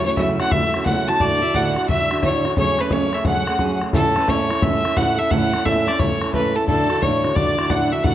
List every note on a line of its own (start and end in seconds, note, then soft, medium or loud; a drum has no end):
0.05 0.17 A3 soft
0.05 0.17 C#4 soft
0.05 0.19 C#5 medium
0.05 0.16 C#5 medium
0.17 0.40 F#2 medium
0.17 0.40 C#3 medium
0.17 0.40 A3 medium
0.17 0.40 C#4 medium
0.17 0.40 E4 medium
0.17 0.39 F#4 loud
0.17 0.27 E5 loud
0.17 0.42 E5 medium
0.17 bodhran loud
0.40 0.51 A3 soft
0.40 0.52 C#4 soft
0.40 0.52 E4 medium
0.40 0.52 F#4 medium
0.40 0.53 F#5 loud
0.40 0.53 F#5 medium
0.40 bodhran medium
0.51 0.74 A3 medium
0.51 0.75 C#4 medium
0.51 0.74 E4 medium
0.51 0.73 F#4 medium
0.51 0.87 E5 medium
0.51 0.85 E5 loud
0.51 bodhran medium
0.74 0.86 A3 soft
0.74 0.86 C#4 medium
0.74 0.86 E4 medium
0.74 0.86 F#4 medium
0.74 bodhran medium
0.86 1.08 F#2 medium
0.86 1.08 C#3 medium
0.86 1.09 A3 medium
0.86 1.09 C#4 medium
0.86 1.08 E4 medium
0.86 1.07 F#4 medium
0.86 1.10 F#5 loud
0.86 1.09 F#5 medium
0.86 bodhran medium
1.08 1.20 A3 medium
1.08 1.21 C#4 medium
1.08 1.20 E4 medium
1.08 1.20 F#4 medium
1.08 1.21 A5 medium
1.08 1.22 A5 loud
1.08 bodhran medium
1.20 1.42 D2 medium
1.20 1.43 A2 medium
1.20 1.43 D3 medium
1.20 1.43 D4 medium
1.20 1.42 E4 medium
1.20 1.42 F#4 loud
1.20 1.43 D5 medium
1.20 1.57 D5 loud
1.20 bodhran medium
1.42 1.54 D3 soft
1.42 1.54 D4 medium
1.42 1.55 E4 medium
1.42 1.55 F#4 medium
1.42 1.56 E5 loud
1.54 1.77 D2 medium
1.54 1.77 A2 medium
1.54 1.77 D3 medium
1.54 1.77 D4 loud
1.54 1.77 E4 loud
1.54 1.76 F#4 medium
1.54 1.87 F#5 loud
1.54 1.89 F#5 loud
1.54 bodhran medium
1.76 1.88 D3 soft
1.76 1.88 D4 soft
1.76 1.89 E4 medium
1.76 1.89 F#4 medium
1.76 bodhran medium
1.88 2.11 D3 medium
1.88 2.11 D4 medium
1.88 2.11 E4 medium
1.88 2.10 F#4 medium
1.88 2.25 E5 loud
1.88 2.21 E5 loud
1.88 bodhran medium
2.11 2.22 D3 soft
2.11 2.23 D4 medium
2.11 2.23 E4 medium
2.11 2.23 F#4 medium
2.11 bodhran medium
2.23 2.45 D2 medium
2.23 2.45 A2 medium
2.23 2.45 D3 medium
2.23 2.45 D4 loud
2.23 2.45 E4 medium
2.23 2.44 F#4 medium
2.23 2.55 C#5 medium
2.23 2.56 C#5 medium
2.23 bodhran loud
2.45 2.56 D3 soft
2.45 2.57 D4 soft
2.45 2.57 E4 soft
2.45 2.57 F#4 medium
2.45 bodhran medium
2.57 2.79 F#3 medium
2.57 2.79 A3 medium
2.57 2.80 C#4 medium
2.57 2.78 G#4 medium
2.57 2.81 C#5 medium
2.57 2.82 C#5 loud
2.57 bodhran medium
2.79 2.91 A3 medium
2.79 2.91 C#4 soft
2.79 2.91 G#4 medium
2.79 2.93 B4 medium
2.79 2.94 B4 medium
2.79 bodhran medium
2.91 3.14 F#3 medium
2.91 3.14 A3 medium
2.91 3.14 C#4 medium
2.91 3.12 G#4 medium
2.91 3.26 C#5 medium
2.91 3.16 C#5 loud
2.91 bodhran medium
3.13 3.25 A3 medium
3.13 3.25 C#4 medium
3.13 3.26 G#4 medium
3.13 3.26 E5 loud
3.13 bodhran medium
3.25 3.48 F#3 medium
3.25 3.47 A3 medium
3.25 3.47 C#4 medium
3.25 3.46 G#4 medium
3.25 3.79 F#5 loud
3.25 3.79 F#5 medium
3.25 bodhran medium
3.47 3.59 A3 soft
3.47 3.59 C#4 soft
3.47 3.59 G#4 medium
3.47 bodhran medium
3.59 3.82 F#3 medium
3.59 3.82 A3 medium
3.59 3.82 C#4 medium
3.59 3.80 G#4 medium
3.59 bodhran medium
3.81 3.93 A3 medium
3.81 3.93 C#4 soft
3.81 3.94 G#4 medium
3.81 bodhran medium
3.93 4.16 A2 medium
3.93 4.16 A3 medium
3.93 4.17 C#4 medium
3.93 4.15 E4 loud
3.93 4.14 A4 medium
3.93 4.31 A4 loud
3.93 4.15 A4 medium
3.93 bodhran medium
4.16 4.27 C#4 medium
4.16 4.27 E4 medium
4.16 4.28 A4 medium
4.16 4.30 B4 medium
4.16 bodhran medium
4.27 4.50 A2 medium
4.27 4.50 A3 medium
4.27 4.51 C#4 medium
4.27 4.49 E4 medium
4.27 4.48 A4 medium
4.27 4.62 C#5 medium
4.27 4.64 C#5 loud
4.27 bodhran medium
4.49 4.62 C#4 soft
4.49 4.62 E4 medium
4.49 4.62 A4 medium
4.49 bodhran medium
4.62 4.85 A3 medium
4.62 4.85 C#4 medium
4.62 4.85 E4 medium
4.62 4.83 A4 medium
4.62 4.98 E5 loud
4.62 bodhran loud
4.74 bodhran soft
4.85 4.96 C#4 soft
4.85 4.97 E4 medium
4.85 4.97 A4 medium
4.85 bodhran medium
4.96 5.19 A2 medium
4.96 5.19 A3 medium
4.96 5.19 C#4 medium
4.96 5.19 E4 medium
4.96 5.18 A4 medium
4.96 5.20 F#5 loud
4.96 bodhran loud
5.18 5.31 C#4 soft
5.18 5.31 E4 medium
5.18 5.31 A4 medium
5.18 5.32 E5 medium
5.18 5.32 E5 loud
5.31 5.54 A2 medium
5.31 5.54 A3 medium
5.31 5.54 C#4 medium
5.31 5.54 E4 medium
5.31 5.53 A4 medium
5.31 5.67 F#5 medium
5.31 5.67 F#5 loud
5.31 bodhran medium
5.54 5.65 C#4 medium
5.54 5.65 E4 medium
5.54 5.66 A4 medium
5.54 bodhran medium
5.65 5.87 A2 medium
5.65 5.88 A3 medium
5.65 5.88 C#4 medium
5.65 5.87 E4 medium
5.65 5.86 A4 loud
5.65 5.88 E5 medium
5.65 5.89 E5 loud
5.65 bodhran medium
5.87 5.99 C#4 soft
5.87 6.00 E4 soft
5.87 5.99 A4 medium
5.87 6.00 D5 medium
5.87 6.01 D5 loud
5.87 bodhran medium
5.99 6.22 A3 medium
5.99 6.22 C#4 medium
5.99 6.22 E4 medium
5.99 6.21 A4 medium
5.99 6.33 C#5 medium
5.99 6.33 C#5 loud
5.99 bodhran medium
6.11 bodhran soft
6.21 6.33 C#4 soft
6.21 6.33 E4 medium
6.21 6.33 A4 medium
6.21 bodhran medium
6.34 6.56 A2 medium
6.34 6.56 A3 medium
6.34 6.56 C#4 medium
6.34 6.55 E4 medium
6.34 6.54 A4 medium
6.34 6.57 B4 medium
6.34 bodhran medium
6.55 6.68 C#4 medium
6.55 6.68 E4 medium
6.55 6.67 A4 medium
6.55 6.68 A4 medium
6.67 6.90 D2 medium
6.67 6.90 A2 medium
6.67 6.90 D3 medium
6.67 6.90 D4 medium
6.67 6.89 E4 medium
6.67 6.88 F#4 loud
6.67 7.03 A4 loud
6.67 7.03 A4 medium
6.67 bodhran medium
6.89 7.01 D3 soft
6.89 7.01 D4 medium
6.89 7.02 E4 medium
6.89 7.02 F#4 medium
6.89 bodhran medium
7.02 7.24 D2 medium
7.02 7.24 A2 medium
7.02 7.24 D3 medium
7.02 7.24 D4 medium
7.02 7.23 E4 medium
7.02 7.22 F#4 medium
7.02 7.23 C#5 medium
7.02 7.37 C#5 loud
7.02 bodhran medium
7.23 7.34 D3 medium
7.23 7.35 D4 medium
7.23 7.36 E4 soft
7.23 7.36 F#4 medium
7.23 7.36 C#5 medium
7.23 bodhran medium
7.35 7.58 D3 medium
7.35 7.58 D4 medium
7.35 7.57 E4 medium
7.35 7.56 F#4 medium
7.35 7.71 D5 loud
7.35 bodhran medium
7.48 bodhran soft
7.57 7.70 D3 soft
7.57 7.70 D4 medium
7.57 7.70 E4 medium
7.57 7.70 F#4 medium
7.57 bodhran medium
7.70 7.92 D2 medium
7.70 7.93 A2 medium
7.70 7.93 D3 medium
7.70 7.92 D4 medium
7.70 7.91 E4 medium
7.70 7.91 F#4 medium
7.70 7.94 F#5 loud
7.70 bodhran loud
7.92 8.04 D3 soft
7.92 8.04 D4 medium
7.92 8.04 E4 medium
7.92 8.04 F#4 medium
7.92 8.03 E5 medium
7.92 8.05 E5 loud
8.04 8.15 D2 medium
8.04 8.15 A2 medium
8.04 8.15 D3 medium
8.04 8.15 D4 medium
8.04 8.15 E4 medium
8.04 8.15 F#4 medium
8.04 8.15 F#5 loud
8.04 bodhran medium